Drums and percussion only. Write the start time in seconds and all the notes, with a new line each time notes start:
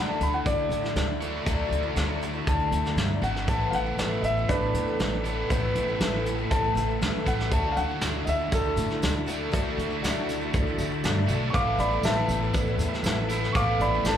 0.21 closed hi-hat
0.46 kick, closed hi-hat
0.71 closed hi-hat
0.85 snare
0.96 snare, closed hi-hat
1.22 closed hi-hat
1.46 kick, closed hi-hat
1.72 closed hi-hat
1.97 snare, closed hi-hat
2.22 closed hi-hat
2.47 kick, closed hi-hat
2.72 closed hi-hat
2.85 snare
2.97 snare, closed hi-hat
3.23 closed hi-hat
3.36 snare
3.48 kick, closed hi-hat
3.73 closed hi-hat
3.99 snare, closed hi-hat
4.24 closed hi-hat
4.49 kick, closed hi-hat
4.74 closed hi-hat
5.00 snare, closed hi-hat
5.25 closed hi-hat
5.50 kick, closed hi-hat
5.75 closed hi-hat
6.00 snare, closed hi-hat
6.26 closed hi-hat
6.51 kick, closed hi-hat
6.77 closed hi-hat
7.02 snare, closed hi-hat
7.26 kick, closed hi-hat
7.40 snare
7.51 kick, closed hi-hat
7.76 closed hi-hat, tambourine
8.01 snare, closed hi-hat, tambourine
8.27 closed hi-hat, tambourine
8.52 kick, closed hi-hat, tambourine
8.77 closed hi-hat, tambourine
8.91 snare
9.03 snare, closed hi-hat, tambourine
9.28 closed hi-hat, tambourine
9.54 kick, closed hi-hat
9.79 closed hi-hat, tambourine
10.04 snare, closed hi-hat, tambourine
10.29 closed hi-hat, tambourine
10.54 kick, closed hi-hat, tambourine
10.79 closed hi-hat, tambourine
11.04 snare, closed hi-hat, tambourine
11.29 closed hi-hat, tambourine
11.54 kick, closed hi-hat
11.79 closed hi-hat, tambourine
12.03 snare, closed hi-hat, tambourine
12.29 closed hi-hat, tambourine
12.54 kick, closed hi-hat, tambourine
12.79 closed hi-hat, tambourine
12.94 snare
13.04 snare, closed hi-hat, tambourine
13.30 closed hi-hat, tambourine
13.44 snare
13.55 kick, closed hi-hat, tambourine
13.80 closed hi-hat
14.05 snare, closed hi-hat, tambourine